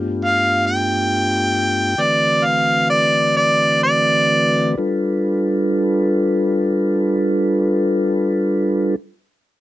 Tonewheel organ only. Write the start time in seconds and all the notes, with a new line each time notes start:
Already playing: G2 A3 B3 D4 F4 G4
1.98 D3 E3 A3 C4 F#4 B4
4.77 G3 D4 F4 A4 B4